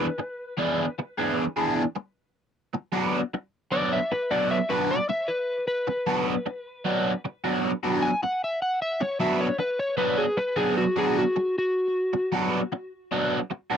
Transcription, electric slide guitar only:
0.00 0.94 B4 medium
3.72 3.91 D5 medium
3.93 4.11 E5 medium
4.12 4.31 B4 medium
4.31 4.50 D5 medium
4.51 4.70 E5 medium
4.70 4.89 B4 medium
4.91 5.09 D5 medium
5.09 5.29 E5 medium
5.28 5.66 B4 medium
5.68 7.21 B4 medium
8.03 8.22 G#5 medium
8.23 8.42 F#5 medium
8.44 8.62 E5 medium
8.62 8.81 F#5 medium
8.82 9.01 E5 medium
9.01 9.20 C#5 medium
9.20 9.40 E5 medium
9.41 9.59 C#5 medium
9.60 9.79 B4 medium
9.79 9.97 C#5 medium
9.98 10.17 B4 medium
10.18 10.37 G#4 medium
10.37 10.57 B4 medium
10.57 10.76 G#4 medium
10.78 10.97 F#4 medium
10.98 11.17 G#4 medium
11.19 11.56 F#4 medium
11.58 12.33 F#4 medium

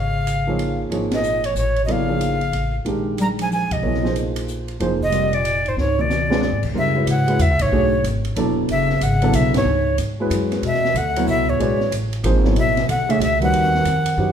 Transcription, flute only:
0.00 0.80 F5 medium
1.14 1.47 D#5 medium
1.46 1.57 C#5 medium
1.57 1.82 C#5 medium
1.85 1.93 D#5 medium
1.91 2.75 F5 medium
3.21 3.27 A#5 medium
3.42 3.51 G#5 medium
3.53 3.74 G#5 medium
3.72 4.16 D#5 medium
5.03 5.36 D#5 medium
5.34 5.70 D5 loud
5.69 5.79 C5 medium
5.79 6.02 C#5 medium
6.01 6.65 D5 medium
6.78 7.07 E5 medium
7.10 7.43 F#5 medium
7.42 7.63 E5 loud
7.62 8.05 C#5 medium
8.71 9.05 E5 medium
9.03 9.37 F#5 medium
9.35 9.55 E5 medium
9.57 9.97 C#5 medium
10.67 10.99 E5 medium
10.97 11.29 F#5 medium
11.29 11.51 E5 loud
11.50 11.93 C#5 medium
12.59 12.88 E5 medium
12.90 13.12 F#5 medium
13.11 13.22 E5 medium
13.23 13.41 E5 loud
13.43 14.32 F#5 medium

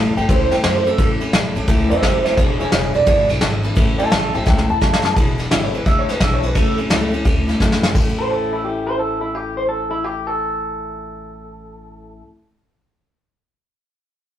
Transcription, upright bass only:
0.00 0.12 A1 loud
0.17 0.27 A1 medium
0.29 0.46 C#2 loud
0.51 0.61 E2 medium
0.64 0.91 F#2 medium
0.98 1.25 A1 loud
1.33 1.51 A1 medium
1.55 1.65 A1 medium
1.68 1.85 C#2 loud
1.91 2.00 E2 medium
2.03 2.38 F#1 medium
2.38 2.64 E1 loud
2.73 2.90 E1 loud
2.95 3.04 E1 medium
3.07 3.24 G#1 loud
3.29 3.39 B1 loud
3.41 3.68 G#1 medium
3.77 4.03 A1 loud
4.12 4.29 A1 medium
4.35 4.44 A1 loud
4.47 4.64 C#2 medium
4.69 4.79 E2 medium
4.82 5.08 F#2 loud
5.17 5.44 E1 loud
5.52 5.79 G#1 loud
5.86 6.13 D2 medium
6.21 6.56 B1 medium
6.56 6.83 A1 loud
6.91 7.18 C#2 loud
7.25 7.53 D2 loud
7.60 7.88 F#2 medium
7.95 12.20 A1 loud

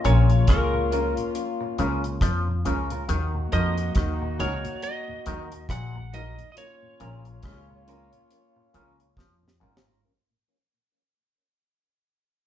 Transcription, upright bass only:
0.05 0.46 A#1 medium
0.48 1.13 C#2 loud
1.79 2.20 C#2 medium
2.21 2.63 F2 medium
2.66 3.07 C#2 medium
3.09 3.50 D#2 loud
3.53 3.94 F2 medium
3.96 4.37 D#2 loud
4.39 4.63 C#2 medium
5.26 5.68 D#2 medium
5.69 6.35 A#1 medium
7.01 7.42 A#1 medium
7.44 8.09 C#2 loud
8.74 9.15 C#2 medium
9.17 9.59 F2 loud
9.61 10.02 G#1 medium

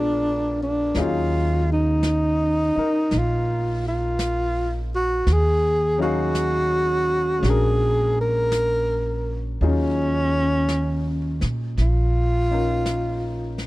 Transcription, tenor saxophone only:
0.00 0.63 D4 medium
0.63 1.03 D4 medium
1.01 1.71 F4 medium
1.73 3.19 D#4 medium
3.18 3.87 F4 medium
3.88 4.78 F4 medium
4.95 5.34 F#4 medium
5.32 6.02 G#4 medium
6.02 7.50 F#4 loud
7.49 8.19 G#4 medium
8.21 9.41 A#4 medium
9.64 11.40 C#4 medium
11.81 13.56 F4 medium

